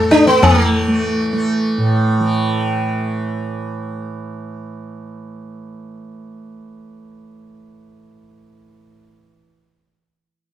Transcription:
0.00 1.77 A2 medium
0.00 0.42 E3 medium
0.00 0.88 A3 medium
0.00 0.12 A4 soft
0.11 0.27 D4 loud
0.11 tabla te medium
0.27 0.43 B3 loud
0.27 tabla te medium
0.42 2.20 E3 medium
0.42 0.62 A#3 loud
0.42 tabla na loud
0.42 tabla ge loud
0.62 4.06 A3 loud
0.88 1.33 A3 medium
1.33 7.43 A3 medium
1.78 8.93 A2 medium
2.20 9.35 E3 medium

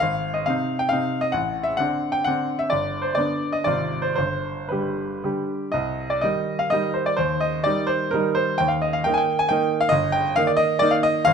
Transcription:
0.00 0.46 G#1 medium
0.00 0.35 F5 medium
0.34 0.46 D#5 medium
0.46 0.87 C3 soft
0.46 0.88 C4 soft
0.46 0.88 D#4 soft
0.46 0.80 F5 medium
0.79 0.91 G5 medium
0.89 1.30 C3 soft
0.89 1.31 C4 soft
0.89 1.31 D#4 soft
0.89 1.23 F5 medium
1.21 1.33 D#5 medium
1.32 1.77 A1 medium
1.32 1.66 F#5 medium
1.64 1.77 E5 medium
1.77 2.22 D3 soft
1.77 2.23 C4 soft
1.77 2.23 D4 soft
1.77 2.14 F#5 medium
2.12 2.25 G5 medium
2.24 2.68 D3 soft
2.24 2.68 C4 soft
2.24 2.68 D4 soft
2.24 2.60 F#5 medium
2.59 2.71 E5 medium
2.70 3.16 G1 soft
2.70 3.04 D5 medium
3.02 3.16 C5 medium
3.15 3.62 D3 soft
3.15 3.63 B3 soft
3.15 3.63 D4 soft
3.15 3.53 D5 medium
3.52 3.66 D#5 medium
3.64 4.15 G#1 soft
3.64 4.13 C3 soft
3.64 4.13 C4 soft
3.64 4.13 F4 soft
3.64 4.03 D5 medium
4.02 4.14 C5 medium
4.16 4.70 G1 soft
4.16 4.70 C5 medium
4.69 5.21 D3 soft
4.69 5.21 G3 soft
4.69 5.21 G4 soft
4.69 5.49 B4 soft
5.24 5.70 D3 soft
5.24 5.70 G3 soft
5.24 5.70 G4 soft
5.72 6.21 C2 soft
5.72 6.09 D#5 medium
6.10 6.23 D5 medium
6.21 6.68 D#3 soft
6.21 6.68 G3 soft
6.21 6.68 D#4 soft
6.21 6.59 D#5 medium
6.59 6.71 F5 medium
6.70 7.15 D#3 soft
6.70 7.15 G3 soft
6.70 7.15 D#4 soft
6.70 6.95 D#5 medium
6.94 7.06 C5 medium
7.06 7.18 D5 medium
7.17 7.63 D#2 soft
7.17 7.40 C5 medium
7.40 7.64 D#5 medium
7.64 8.10 D#3 soft
7.64 8.10 G3 soft
7.64 8.11 D#4 soft
7.64 7.89 D5 medium
7.87 8.12 C5 medium
8.11 8.56 D#3 soft
8.11 8.56 G3 soft
8.11 8.57 D#4 soft
8.11 8.36 A#4 medium
8.35 8.59 C5 medium
8.58 9.05 D#2 medium
8.58 8.70 G5 medium
8.68 8.81 F5 medium
8.82 8.94 D#5 medium
8.93 9.05 F5 medium
9.04 9.47 D#3 soft
9.04 9.47 A#3 soft
9.04 9.47 D#4 soft
9.04 9.12 G5 medium
9.14 9.39 G5 medium
9.14 9.20 G#5 medium
9.39 9.50 G#5 medium
9.49 9.89 D#3 medium
9.49 9.89 A#3 medium
9.49 9.89 D#4 medium
9.49 9.81 G5 medium
9.81 9.92 F5 medium
9.89 10.36 G1 medium
9.89 10.13 D#5 medium
10.12 10.37 G5 medium
10.36 10.79 D#3 soft
10.36 10.80 A#3 soft
10.36 10.80 D#4 medium
10.36 10.49 F5 medium
10.47 10.60 D5 medium
10.57 10.81 D#5 medium
10.79 11.23 D#3 medium
10.79 11.24 A#3 medium
10.79 11.24 D#4 medium
10.79 10.93 D5 medium
10.91 11.04 F5 medium
11.03 11.27 D#5 medium
11.25 11.33 G#1 medium
11.25 11.33 F5 loud

